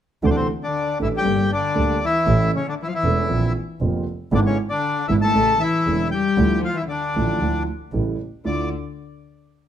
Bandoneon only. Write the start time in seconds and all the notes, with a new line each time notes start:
0.26 C5
0.30 D4 D5
0.36 C4 C5
0.63 D4 D5
1.02 E4 E5
1.16 G4 G5
1.52 D4 D5
2.05 E4 E5
2.55 C#4 C#5
2.69 D4 D5
2.82 E4 E5
2.88 F5
2.94 E4 E5
4.35 D4 D5
4.46 C#4 C#5
4.70 D4 D5
5.08 E4 E5
5.22 A4 A5
5.60 E4 E5
6.11 G4 G5
6.65 F4 F5
6.77 E4 E5
6.89 D4 D5
8.46 D5